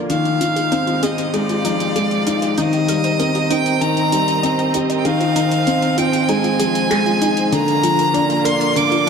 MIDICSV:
0, 0, Header, 1, 6, 480
1, 0, Start_track
1, 0, Tempo, 618557
1, 80, Time_signature, 4, 2, 24, 8
1, 7056, End_track
2, 0, Start_track
2, 0, Title_t, "Violin"
2, 0, Program_c, 0, 40
2, 82, Note_on_c, 0, 77, 92
2, 802, Note_on_c, 0, 75, 79
2, 813, Note_off_c, 0, 77, 0
2, 1040, Note_on_c, 0, 74, 89
2, 1052, Note_off_c, 0, 75, 0
2, 2001, Note_on_c, 0, 75, 99
2, 2013, Note_off_c, 0, 74, 0
2, 2721, Note_on_c, 0, 79, 100
2, 2732, Note_off_c, 0, 75, 0
2, 2961, Note_on_c, 0, 82, 97
2, 2972, Note_off_c, 0, 79, 0
2, 3680, Note_off_c, 0, 82, 0
2, 3863, Note_on_c, 0, 79, 65
2, 3921, Note_on_c, 0, 77, 96
2, 3933, Note_off_c, 0, 79, 0
2, 4639, Note_on_c, 0, 79, 89
2, 4651, Note_off_c, 0, 77, 0
2, 4878, Note_on_c, 0, 80, 104
2, 4889, Note_off_c, 0, 79, 0
2, 5842, Note_on_c, 0, 82, 101
2, 5853, Note_off_c, 0, 80, 0
2, 6559, Note_on_c, 0, 84, 102
2, 6570, Note_off_c, 0, 82, 0
2, 6801, Note_on_c, 0, 86, 107
2, 6813, Note_off_c, 0, 84, 0
2, 7056, Note_off_c, 0, 86, 0
2, 7056, End_track
3, 0, Start_track
3, 0, Title_t, "Synth arpeggio sound"
3, 0, Program_c, 1, 84
3, 316, Note_on_c, 1, 65, 77
3, 386, Note_off_c, 1, 65, 0
3, 435, Note_on_c, 1, 68, 76
3, 483, Note_off_c, 1, 68, 0
3, 557, Note_on_c, 1, 63, 95
3, 604, Note_off_c, 1, 63, 0
3, 678, Note_on_c, 1, 65, 70
3, 724, Note_off_c, 1, 65, 0
3, 798, Note_on_c, 1, 68, 99
3, 844, Note_off_c, 1, 68, 0
3, 918, Note_on_c, 1, 72, 76
3, 964, Note_off_c, 1, 72, 0
3, 1037, Note_on_c, 1, 68, 79
3, 1107, Note_off_c, 1, 68, 0
3, 1160, Note_on_c, 1, 65, 68
3, 1205, Note_off_c, 1, 65, 0
3, 1279, Note_on_c, 1, 63, 93
3, 1325, Note_off_c, 1, 63, 0
3, 1761, Note_on_c, 1, 65, 76
3, 1829, Note_off_c, 1, 65, 0
3, 1880, Note_on_c, 1, 68, 74
3, 1925, Note_off_c, 1, 68, 0
3, 2001, Note_on_c, 1, 63, 101
3, 2046, Note_off_c, 1, 63, 0
3, 2121, Note_on_c, 1, 67, 74
3, 2166, Note_off_c, 1, 67, 0
3, 2242, Note_on_c, 1, 70, 97
3, 2286, Note_off_c, 1, 70, 0
3, 2361, Note_on_c, 1, 72, 75
3, 2406, Note_off_c, 1, 72, 0
3, 2479, Note_on_c, 1, 70, 83
3, 2548, Note_off_c, 1, 70, 0
3, 2602, Note_on_c, 1, 67, 71
3, 2646, Note_off_c, 1, 67, 0
3, 2720, Note_on_c, 1, 63, 103
3, 2765, Note_off_c, 1, 63, 0
3, 3200, Note_on_c, 1, 63, 74
3, 3268, Note_off_c, 1, 63, 0
3, 3318, Note_on_c, 1, 63, 90
3, 3365, Note_off_c, 1, 63, 0
3, 3438, Note_on_c, 1, 75, 92
3, 3485, Note_off_c, 1, 75, 0
3, 3560, Note_on_c, 1, 70, 94
3, 3605, Note_off_c, 1, 70, 0
3, 3679, Note_on_c, 1, 63, 76
3, 3725, Note_off_c, 1, 63, 0
3, 3799, Note_on_c, 1, 75, 71
3, 3845, Note_off_c, 1, 75, 0
3, 3919, Note_on_c, 1, 68, 80
3, 3988, Note_off_c, 1, 68, 0
3, 4041, Note_on_c, 1, 65, 71
3, 4086, Note_off_c, 1, 65, 0
3, 4159, Note_on_c, 1, 63, 100
3, 4205, Note_off_c, 1, 63, 0
3, 4638, Note_on_c, 1, 65, 75
3, 4707, Note_off_c, 1, 65, 0
3, 4759, Note_on_c, 1, 68, 77
3, 4805, Note_off_c, 1, 68, 0
3, 4880, Note_on_c, 1, 63, 103
3, 4925, Note_off_c, 1, 63, 0
3, 4999, Note_on_c, 1, 65, 69
3, 5045, Note_off_c, 1, 65, 0
3, 5117, Note_on_c, 1, 68, 100
3, 5164, Note_off_c, 1, 68, 0
3, 5237, Note_on_c, 1, 72, 68
3, 5284, Note_off_c, 1, 72, 0
3, 5358, Note_on_c, 1, 68, 82
3, 5427, Note_off_c, 1, 68, 0
3, 5479, Note_on_c, 1, 65, 76
3, 5525, Note_off_c, 1, 65, 0
3, 5599, Note_on_c, 1, 63, 101
3, 5645, Note_off_c, 1, 63, 0
3, 6078, Note_on_c, 1, 65, 73
3, 6147, Note_off_c, 1, 65, 0
3, 6196, Note_on_c, 1, 70, 76
3, 6243, Note_off_c, 1, 70, 0
3, 6316, Note_on_c, 1, 62, 102
3, 6363, Note_off_c, 1, 62, 0
3, 6434, Note_on_c, 1, 65, 70
3, 6482, Note_off_c, 1, 65, 0
3, 6554, Note_on_c, 1, 70, 99
3, 6603, Note_off_c, 1, 70, 0
3, 6677, Note_on_c, 1, 74, 77
3, 6724, Note_off_c, 1, 74, 0
3, 6796, Note_on_c, 1, 70, 81
3, 6866, Note_off_c, 1, 70, 0
3, 6918, Note_on_c, 1, 65, 72
3, 6964, Note_off_c, 1, 65, 0
3, 7056, End_track
4, 0, Start_track
4, 0, Title_t, "String section"
4, 0, Program_c, 2, 48
4, 0, Note_on_c, 2, 46, 76
4, 0, Note_on_c, 2, 58, 78
4, 0, Note_on_c, 2, 65, 74
4, 0, Note_on_c, 2, 74, 65
4, 77, Note_on_c, 2, 56, 71
4, 79, Note_off_c, 2, 46, 0
4, 158, Note_on_c, 2, 63, 73
4, 427, Note_on_c, 2, 67, 65
4, 795, Note_on_c, 2, 77, 90
4, 847, Note_off_c, 2, 74, 0
4, 848, Note_off_c, 2, 58, 0
4, 848, Note_off_c, 2, 65, 0
4, 1998, Note_on_c, 2, 48, 71
4, 1999, Note_off_c, 2, 56, 0
4, 2054, Note_on_c, 2, 70, 72
4, 2095, Note_on_c, 2, 60, 75
4, 2528, Note_on_c, 2, 75, 80
4, 2766, Note_off_c, 2, 67, 0
4, 2767, Note_off_c, 2, 63, 0
4, 2767, Note_off_c, 2, 77, 0
4, 3919, Note_off_c, 2, 48, 0
4, 3919, Note_on_c, 2, 53, 81
4, 4096, Note_on_c, 2, 68, 65
4, 4686, Note_off_c, 2, 70, 0
4, 5833, Note_on_c, 2, 46, 87
4, 5838, Note_off_c, 2, 75, 0
4, 5839, Note_off_c, 2, 53, 0
4, 5878, Note_on_c, 2, 58, 75
4, 5979, Note_on_c, 2, 65, 84
4, 6570, Note_on_c, 2, 74, 91
4, 6606, Note_off_c, 2, 68, 0
4, 6607, Note_off_c, 2, 60, 0
4, 7056, Note_off_c, 2, 46, 0
4, 7056, Note_off_c, 2, 58, 0
4, 7056, Note_off_c, 2, 65, 0
4, 7056, Note_off_c, 2, 74, 0
4, 7056, End_track
5, 0, Start_track
5, 0, Title_t, "Upright piano"
5, 0, Program_c, 3, 0
5, 0, Control_c, 3, 64, 127
5, 0, Note_on_c, 3, 50, 75
5, 0, Note_on_c, 3, 53, 65
5, 0, Note_on_c, 3, 62, 70
5, 0, Note_on_c, 3, 70, 67
5, 76, Note_on_c, 3, 51, 92
5, 89, Control_c, 3, 64, 0
5, 90, Note_off_c, 3, 70, 0
5, 91, Note_off_c, 3, 62, 0
5, 92, Note_off_c, 3, 53, 0
5, 93, Note_off_c, 3, 50, 0
5, 235, Control_c, 3, 64, 127
5, 306, Note_off_c, 3, 51, 0
5, 317, Note_on_c, 3, 51, 69
5, 547, Note_off_c, 3, 51, 0
5, 557, Note_on_c, 3, 60, 89
5, 785, Note_off_c, 3, 60, 0
5, 797, Note_on_c, 3, 60, 73
5, 1026, Note_off_c, 3, 60, 0
5, 1037, Note_on_c, 3, 56, 77
5, 1267, Note_off_c, 3, 56, 0
5, 1278, Note_on_c, 3, 53, 67
5, 1416, Note_off_c, 3, 53, 0
5, 1519, Note_on_c, 3, 56, 91
5, 1748, Note_off_c, 3, 56, 0
5, 1761, Note_on_c, 3, 63, 71
5, 1988, Note_off_c, 3, 63, 0
5, 2001, Note_on_c, 3, 51, 97
5, 2009, Control_c, 3, 64, 0
5, 2170, Control_c, 3, 64, 127
5, 2228, Note_off_c, 3, 51, 0
5, 2239, Note_on_c, 3, 55, 69
5, 2467, Note_off_c, 3, 55, 0
5, 2478, Note_on_c, 3, 60, 65
5, 2616, Note_off_c, 3, 60, 0
5, 2717, Note_on_c, 3, 60, 71
5, 2946, Note_off_c, 3, 60, 0
5, 2959, Note_on_c, 3, 51, 78
5, 3096, Note_off_c, 3, 51, 0
5, 3197, Note_on_c, 3, 55, 69
5, 3335, Note_off_c, 3, 55, 0
5, 3440, Note_on_c, 3, 60, 68
5, 3668, Note_off_c, 3, 60, 0
5, 3681, Note_on_c, 3, 67, 67
5, 3908, Note_off_c, 3, 67, 0
5, 3921, Note_on_c, 3, 51, 94
5, 3929, Control_c, 3, 64, 0
5, 4066, Control_c, 3, 64, 127
5, 4148, Note_off_c, 3, 51, 0
5, 4161, Note_on_c, 3, 51, 69
5, 4388, Note_off_c, 3, 51, 0
5, 4400, Note_on_c, 3, 60, 93
5, 4628, Note_off_c, 3, 60, 0
5, 4641, Note_on_c, 3, 60, 75
5, 4868, Note_off_c, 3, 60, 0
5, 4881, Note_on_c, 3, 56, 83
5, 5108, Note_off_c, 3, 56, 0
5, 5118, Note_on_c, 3, 53, 66
5, 5256, Note_off_c, 3, 53, 0
5, 5359, Note_on_c, 3, 56, 99
5, 5587, Note_off_c, 3, 56, 0
5, 5596, Note_on_c, 3, 63, 73
5, 5826, Note_off_c, 3, 63, 0
5, 5838, Note_on_c, 3, 50, 99
5, 5850, Control_c, 3, 64, 0
5, 6005, Control_c, 3, 64, 127
5, 6067, Note_off_c, 3, 50, 0
5, 6078, Note_on_c, 3, 53, 71
5, 6307, Note_off_c, 3, 53, 0
5, 6319, Note_on_c, 3, 62, 75
5, 6456, Note_off_c, 3, 62, 0
5, 6558, Note_on_c, 3, 62, 77
5, 6787, Note_off_c, 3, 62, 0
5, 6799, Note_on_c, 3, 50, 86
5, 6936, Note_off_c, 3, 50, 0
5, 7056, End_track
6, 0, Start_track
6, 0, Title_t, "Drums"
6, 76, Note_on_c, 9, 42, 37
6, 153, Note_off_c, 9, 42, 0
6, 197, Note_on_c, 9, 42, 20
6, 275, Note_off_c, 9, 42, 0
6, 318, Note_on_c, 9, 42, 75
6, 395, Note_off_c, 9, 42, 0
6, 438, Note_on_c, 9, 42, 29
6, 516, Note_off_c, 9, 42, 0
6, 558, Note_on_c, 9, 42, 37
6, 635, Note_off_c, 9, 42, 0
6, 678, Note_on_c, 9, 42, 21
6, 756, Note_off_c, 9, 42, 0
6, 797, Note_on_c, 9, 42, 64
6, 875, Note_off_c, 9, 42, 0
6, 917, Note_on_c, 9, 42, 30
6, 995, Note_off_c, 9, 42, 0
6, 1038, Note_on_c, 9, 42, 40
6, 1115, Note_off_c, 9, 42, 0
6, 1159, Note_on_c, 9, 42, 20
6, 1237, Note_off_c, 9, 42, 0
6, 1279, Note_on_c, 9, 42, 67
6, 1357, Note_off_c, 9, 42, 0
6, 1400, Note_on_c, 9, 42, 30
6, 1477, Note_off_c, 9, 42, 0
6, 1520, Note_on_c, 9, 42, 40
6, 1598, Note_off_c, 9, 42, 0
6, 1639, Note_on_c, 9, 42, 18
6, 1716, Note_off_c, 9, 42, 0
6, 1759, Note_on_c, 9, 42, 72
6, 1837, Note_off_c, 9, 42, 0
6, 1880, Note_on_c, 9, 42, 30
6, 1957, Note_off_c, 9, 42, 0
6, 1999, Note_on_c, 9, 42, 39
6, 2077, Note_off_c, 9, 42, 0
6, 2118, Note_on_c, 9, 42, 19
6, 2196, Note_off_c, 9, 42, 0
6, 2238, Note_on_c, 9, 42, 73
6, 2316, Note_off_c, 9, 42, 0
6, 2359, Note_on_c, 9, 42, 30
6, 2437, Note_off_c, 9, 42, 0
6, 2480, Note_on_c, 9, 42, 36
6, 2558, Note_off_c, 9, 42, 0
6, 2600, Note_on_c, 9, 42, 22
6, 2677, Note_off_c, 9, 42, 0
6, 2720, Note_on_c, 9, 42, 62
6, 2797, Note_off_c, 9, 42, 0
6, 2840, Note_on_c, 9, 42, 29
6, 2918, Note_off_c, 9, 42, 0
6, 2961, Note_on_c, 9, 42, 41
6, 3038, Note_off_c, 9, 42, 0
6, 3081, Note_on_c, 9, 42, 21
6, 3158, Note_off_c, 9, 42, 0
6, 3200, Note_on_c, 9, 42, 67
6, 3278, Note_off_c, 9, 42, 0
6, 3321, Note_on_c, 9, 42, 30
6, 3399, Note_off_c, 9, 42, 0
6, 3441, Note_on_c, 9, 42, 40
6, 3518, Note_off_c, 9, 42, 0
6, 3561, Note_on_c, 9, 42, 20
6, 3639, Note_off_c, 9, 42, 0
6, 3678, Note_on_c, 9, 42, 69
6, 3756, Note_off_c, 9, 42, 0
6, 3800, Note_on_c, 9, 42, 31
6, 3878, Note_off_c, 9, 42, 0
6, 3919, Note_on_c, 9, 42, 41
6, 3996, Note_off_c, 9, 42, 0
6, 4040, Note_on_c, 9, 42, 19
6, 4117, Note_off_c, 9, 42, 0
6, 4159, Note_on_c, 9, 42, 69
6, 4236, Note_off_c, 9, 42, 0
6, 4279, Note_on_c, 9, 42, 31
6, 4357, Note_off_c, 9, 42, 0
6, 4399, Note_on_c, 9, 42, 37
6, 4477, Note_off_c, 9, 42, 0
6, 4519, Note_on_c, 9, 42, 21
6, 4597, Note_off_c, 9, 42, 0
6, 4639, Note_on_c, 9, 42, 65
6, 4716, Note_off_c, 9, 42, 0
6, 4760, Note_on_c, 9, 42, 30
6, 4837, Note_off_c, 9, 42, 0
6, 4878, Note_on_c, 9, 42, 39
6, 4956, Note_off_c, 9, 42, 0
6, 4999, Note_on_c, 9, 42, 19
6, 5077, Note_off_c, 9, 42, 0
6, 5118, Note_on_c, 9, 42, 69
6, 5196, Note_off_c, 9, 42, 0
6, 5240, Note_on_c, 9, 42, 30
6, 5317, Note_off_c, 9, 42, 0
6, 5361, Note_on_c, 9, 26, 67
6, 5361, Note_on_c, 9, 42, 42
6, 5438, Note_off_c, 9, 26, 0
6, 5438, Note_off_c, 9, 42, 0
6, 5479, Note_on_c, 9, 42, 18
6, 5557, Note_off_c, 9, 42, 0
6, 5600, Note_on_c, 9, 42, 72
6, 5677, Note_off_c, 9, 42, 0
6, 5719, Note_on_c, 9, 42, 30
6, 5796, Note_off_c, 9, 42, 0
6, 5839, Note_on_c, 9, 42, 37
6, 5917, Note_off_c, 9, 42, 0
6, 5960, Note_on_c, 9, 42, 20
6, 6037, Note_off_c, 9, 42, 0
6, 6080, Note_on_c, 9, 42, 68
6, 6157, Note_off_c, 9, 42, 0
6, 6200, Note_on_c, 9, 42, 29
6, 6277, Note_off_c, 9, 42, 0
6, 6320, Note_on_c, 9, 42, 37
6, 6397, Note_off_c, 9, 42, 0
6, 6440, Note_on_c, 9, 42, 19
6, 6518, Note_off_c, 9, 42, 0
6, 6560, Note_on_c, 9, 42, 66
6, 6637, Note_off_c, 9, 42, 0
6, 6681, Note_on_c, 9, 42, 27
6, 6759, Note_off_c, 9, 42, 0
6, 6800, Note_on_c, 9, 42, 42
6, 6878, Note_off_c, 9, 42, 0
6, 6921, Note_on_c, 9, 42, 19
6, 6998, Note_off_c, 9, 42, 0
6, 7056, End_track
0, 0, End_of_file